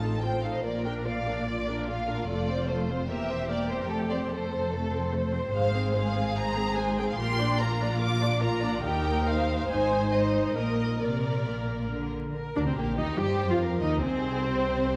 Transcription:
Already playing: A1 A2 F4 A5
0.01 D#4 A4
0.21 C4 F4 C5 G5
0.42 D#4 A4 F5
0.54 D#5
0.63 A#1 A#2 A#3 F4 A#4 D5
0.85 D4 A#4 G5
1.05 A#3 F4 D5 F5
1.27 D4 A#4
1.48 A#3 F4 D5
1.68 D4 A#4
1.88 A#3 F4 F5
2.07 D4 A#4
2.27 F1 F2 A3 A4 D5
2.48 C4 C5
2.68 A3 A4 C5
2.89 C4 C5
3.09 E1 E2 A#3 G4 A#4 E5
3.30 C4 C5
3.50 A#3 G4 A#4 D5
3.69 C4 C5
3.80 A#4
3.89 F1 F2 A3 A4
4.10 C4 C5 D5
4.30 A3 A4 C5
4.51 C4 C5
4.72 A3 A4
4.92 C4 C5
5.12 A3 A4 C5
5.33 C4 C5
5.53 G#1 G#2 G#3 C5 F5
5.74 C4 G#4
5.94 G#3 G#4 C5 F5
6.15 C4 G#4
6.36 G#3 C5 A#5
6.56 C4 G#4
6.76 G#3 C5 G#5
6.98 C4 G#4 G5
7.08 F5
7.17 A#1 A#2 F4 G4 A#4 C6
7.39 D4 D5
7.58 F4 A#4 A#5
7.81 D4 D5
7.99 F4 A#4 D6
8.21 D4 D5
8.41 F4 A#4 A#5
8.62 D4 D5
8.83 D#2 D#4 G4 A#4 G5
9.26 C5 F5
9.68 G#1 G#2 D#4 C5 G#5
10.11 D#4 C5 D#5
10.55 A#1 A#2 A#3 A#4 D#5
11.01 C3 A#3 A#4 D5
11.47 A#2
11.91 D3
12.35 A#4
12.55 D2 D3 D4 D5
12.66 C3 C4 C5
12.76 A#1 A#2 A#3 G4 A#4
12.97 D#2 D#3 D#4 D#5
13.18 G2 G3 G4 C5 G5
13.49 F2 F3 F4 F5
13.61 A#4
13.81 D#2 D#3 D#4 D#5
14.02 C2 C3 C4 G#4 C5
14.46 C5

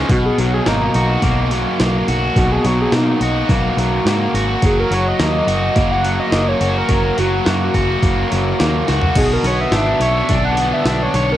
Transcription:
0.09 B1 B2 F#4, kick, open hi-hat
0.26 G#4
0.38 B1 F#3 F#4, open hi-hat
0.54 G#4
0.66 G#1 A#3 D#4, snare, open hi-hat
0.94 B1 F#4, open hi-hat
1.22 B1 A#3, kick, open hi-hat
1.51 F#3, open hi-hat
1.80 B1 A#3, snare, open hi-hat
2.08 B1 F#4, open hi-hat
2.36 B1 B2 F#4, kick, open hi-hat
2.52 G#4
2.64 B1 F#3 F#4, open hi-hat
2.82 G#4
2.92 B2 A#3 D#4, snare, open hi-hat
3.20 B1 F#4, open hi-hat
3.49 B1 A#3, kick, open hi-hat
3.77 B1 F#3, open hi-hat
4.05 G#2 A#3, snare, open hi-hat
4.34 G#1 F#4, open hi-hat
4.62 F#1 F#3 G#4, kick, open hi-hat
4.80 A#4
4.90 F#1 F#3 C#5, open hi-hat
5.08 D#5
5.19 D#2 A#3, snare, open hi-hat
5.47 F#1 F#4, open hi-hat
5.76 F#1 A#3, kick, open hi-hat
5.92 F#5
6.05 F#3, open hi-hat
6.20 D#5
6.32 F#1 A#3, snare, open hi-hat
6.48 C#5
6.61 F#1 F#4, open hi-hat
6.78 A#4
6.89 F#1 F#3, kick, open hi-hat
7.18 F#1 F#3 F#4, open hi-hat
7.45 F#2 A#3, snare, open hi-hat
7.74 F#1 F#4, kick, open hi-hat
8.02 F#1 A#3, kick, open hi-hat
8.30 F#1 F#3, open hi-hat
8.59 D#2 A#3, snare, open hi-hat
8.87 C#2 F#4, snare, open hi-hat
9.01 floor tom
9.15 B1 B2 D3 B3 F#4 G#4, kick, open hi-hat, crash
9.33 A#4
9.44 B1 B3 C#5, open hi-hat
9.61 E5
9.71 G#1 D4, snare, open hi-hat
10.00 B1 C#5, open hi-hat
10.29 B1 D4, kick, open hi-hat
10.45 F#5
10.57 B3, open hi-hat
10.74 E5
10.85 B1 D4, snare, open hi-hat
11.03 C#5
11.14 B1 C#5, open hi-hat
11.32 A#4

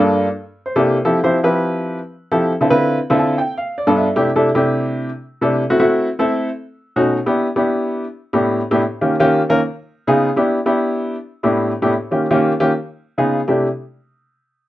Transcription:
Already playing: G2 A#3 D4 F4 A4
0.66 C5
0.76 C3 A#3 D4 E4 G4 A4
1.05 F3 C4 E4 G4 A4
1.24 F3 C4 E4 G4 C5
1.43 F3 C4 E4 G4 B4
2.31 F3 C4 E4 G4 A4
2.61 D3 C4 E4 F4 A4
2.70 D3 C4 E4 F4 B4
3.10 D3 C4 E4 F4 A4
3.19 A5
3.38 G5
3.58 F5
3.78 D5
3.87 G2 B3 D4 F4 A4
3.97 E5
4.16 C3 A3 D4 E4 G4
4.36 C3 A3 D4 E4 A4
4.55 C3 A3 D4 E4 G4
5.41 C3 A3 D4 E4 A4
5.70 A3 C4 E4 F#4
5.79 A3 C4 E4 F#4
6.19 A3 C4 E4 A4
6.96 B2 A3 C#4 D#4 F#4
7.26 B3 D4 E4 G4
7.56 B3 D4 E4 G4
8.33 A2 B3 D4 E4 G4
8.71 A2 B3 D4 E4 G4
9.01 D#3 A#3 C#4 F4 G4
9.20 D#3 A#3 C#4 F4 G4
9.49 D#3 A#3 C#4 F4 A#4
10.07 C#3 B3 D#4 F4 G#4
10.36 B3 D4 E4 G4
10.66 B3 D4 E4 G4
11.43 A2 B3 D4 E4 G4
11.82 A2 B3 D4 E4 G4
12.11 D#3 A#3 C#4 F4 G4
12.31 D#3 A#3 C#4 F4 G4
12.60 D#3 A#3 C#4 F4 G4
13.18 C#3 B3 D#4 F4 G#4
13.48 C3 A3 D4 E4 G4

